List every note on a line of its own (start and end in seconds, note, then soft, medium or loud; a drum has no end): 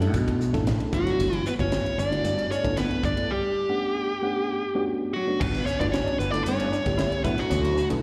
0.00 0.14 F#2 medium
0.00 0.41 A3 medium
0.00 0.41 C#4 medium
0.00 0.41 D4 medium
0.00 0.41 E4 medium
0.00 0.41 A4 medium
0.00 ride medium
0.14 0.56 B2 medium
0.14 kick medium
0.14 hi-hat pedal medium
0.14 ride medium
0.28 kick medium
0.28 ride medium
0.41 hi-hat pedal medium
0.53 0.74 A1 medium
0.53 0.90 A3 medium
0.53 0.92 C#4 medium
0.53 0.91 D4 medium
0.53 0.91 E4 medium
0.53 0.93 A4 medium
0.53 kick medium
0.53 snare soft
0.53 ride soft
0.67 snare loud
0.67 hi-hat pedal medium
0.67 ride medium
0.80 ride soft
0.92 1.03 G1 medium
0.92 1.45 A3 medium
0.92 1.45 B3 medium
0.92 1.45 D4 medium
0.92 1.45 E4 medium
0.92 1.45 F#4 medium
0.92 1.37 F#4 medium
0.92 kick medium
0.92 hi-hat pedal medium
0.96 1.44 F#3 medium
1.07 snare soft
1.07 ride soft
1.19 1.39 G1 medium
1.19 hi-hat pedal medium
1.19 ride medium
1.33 ride soft
1.37 1.48 E4 medium
1.45 1.53 B3 medium
1.45 1.52 B4 medium
1.45 hi-hat pedal medium
1.58 1.80 G1 medium
1.58 1.99 D3 medium
1.58 1.99 A3 medium
1.58 1.99 B3 medium
1.58 1.97 C#4 medium
1.58 1.99 E4 medium
1.58 1.99 F#4 medium
1.58 1.99 C#5 medium
1.58 kick medium
1.58 ride medium
1.72 snare medium
1.72 hi-hat pedal medium
1.72 ride medium
1.85 muted fretless electric bass stroke soft
1.85 ride medium
1.98 2.18 G1 medium
1.98 2.48 D4 medium
1.98 2.51 D5 medium
1.98 hi-hat pedal medium
2.11 2.52 A3 medium
2.11 2.52 B3 medium
2.11 2.52 D4 medium
2.11 2.52 E4 medium
2.11 2.52 F#4 medium
2.11 ride medium
2.24 2.45 G2 medium
2.24 hi-hat pedal medium
2.24 ride medium
2.39 ride soft
2.51 2.76 C#4 medium
2.51 2.76 C#5 medium
2.51 hi-hat pedal medium
2.63 2.85 G1 medium
2.63 3.04 A3 medium
2.63 3.05 B3 medium
2.63 3.05 D4 medium
2.63 3.05 E4 medium
2.63 3.05 A4 medium
2.63 kick medium
2.63 ride medium
2.77 3.02 B3 medium
2.77 3.02 B4 medium
2.77 snare medium
2.77 hi-hat pedal medium
2.77 ride medium
2.91 ride soft
3.03 3.14 G1 medium
3.03 3.28 D4 medium
3.03 3.31 D5 medium
3.03 kick medium
3.03 hi-hat pedal medium
3.16 3.29 A3 medium
3.16 3.29 B3 medium
3.16 3.30 D4 medium
3.16 3.30 E4 soft
3.16 3.30 A4 medium
3.16 ride medium
3.31 4.84 G3 medium
3.31 4.84 G4 medium
3.69 4.10 G2 medium
3.69 4.10 A3 medium
3.69 4.10 B3 medium
3.69 4.10 C#4 medium
3.69 4.10 D4 medium
3.69 4.10 F#5 medium
4.22 4.63 G2 medium
4.22 4.63 A3 medium
4.22 4.63 B3 medium
4.22 4.63 C#4 medium
4.22 4.63 D4 medium
4.22 4.63 F#5 medium
4.75 5.15 G2 medium
4.75 5.15 A3 medium
4.75 5.16 B3 medium
4.75 5.16 C#4 medium
4.75 5.16 D4 medium
4.75 5.16 F#4 medium
5.13 5.40 F#3 medium
5.13 5.41 F#4 medium
5.27 5.40 G2 medium
5.27 5.40 A3 medium
5.27 5.40 B3 medium
5.27 5.40 C#4 medium
5.27 5.41 D4 medium
5.27 5.41 F#4 medium
5.40 5.61 G1 medium
5.40 5.66 B3 medium
5.40 5.56 C#4 medium
5.40 5.66 B4 medium
5.40 kick loud
5.40 crash medium
5.54 snare soft
5.54 ride soft
5.66 5.80 C#4 medium
5.66 5.79 C#5 medium
5.66 hi-hat pedal medium
5.80 6.01 G1 medium
5.80 6.21 A3 medium
5.80 5.96 B3 medium
5.80 6.21 B3 medium
5.80 6.21 D4 soft
5.80 5.86 D4 medium
5.80 6.21 E4 medium
5.80 6.21 F#4 medium
5.80 5.85 D5 medium
5.80 kick medium
5.80 ride soft
5.92 6.20 C#4 medium
5.92 6.19 C#5 medium
5.92 snare medium
5.92 hi-hat pedal medium
5.92 ride medium
6.06 6.23 D4 medium
6.06 muted fretless electric bass stroke soft
6.06 ride soft
6.19 6.40 G1 medium
6.19 6.35 B3 medium
6.19 6.31 B4 medium
6.19 hi-hat pedal medium
6.31 6.73 A3 medium
6.31 6.49 B3 medium
6.31 6.73 B3 medium
6.31 6.74 D4 medium
6.31 6.74 E4 medium
6.31 6.74 A4 medium
6.31 6.44 D5 medium
6.31 ride medium
6.35 6.47 D4 medium
6.44 6.66 G2 medium
6.44 7.22 C#4 medium
6.44 7.24 C#5 medium
6.44 hi-hat pedal medium
6.44 ride medium
6.60 ride medium
6.72 6.88 D4 medium
6.72 hi-hat pedal medium
6.86 7.06 G1 medium
6.86 7.25 D3 medium
6.86 7.23 A3 medium
6.86 7.24 B3 medium
6.86 7.24 E4 medium
6.86 7.25 G4 medium
6.86 kick medium
6.86 snare soft
6.86 ride medium
6.98 7.14 E4 medium
6.98 snare loud
6.98 hi-hat pedal medium
6.98 ride medium
7.12 ride medium
7.24 7.35 B1 medium
7.24 7.77 A3 medium
7.24 7.39 B3 medium
7.24 7.77 C#4 medium
7.24 7.77 D4 medium
7.24 7.41 E4 medium
7.24 7.77 E4 medium
7.24 7.78 F#4 medium
7.24 7.38 B4 medium
7.24 kick loud
7.24 hi-hat pedal medium
7.38 7.89 F#3 medium
7.38 7.88 F#4 medium
7.38 snare soft
7.38 ride medium
7.50 7.82 D2 medium
7.50 7.67 C#4 medium
7.50 hi-hat pedal medium
7.50 ride medium
7.65 ride medium
7.77 hi-hat pedal medium
7.90 8.02 B1 medium
7.90 8.02 A3 medium
7.90 8.02 B3 medium
7.90 8.02 C#4 medium
7.90 8.02 D4 medium
7.90 8.02 E4 medium
7.90 8.02 A4 medium
7.90 ride medium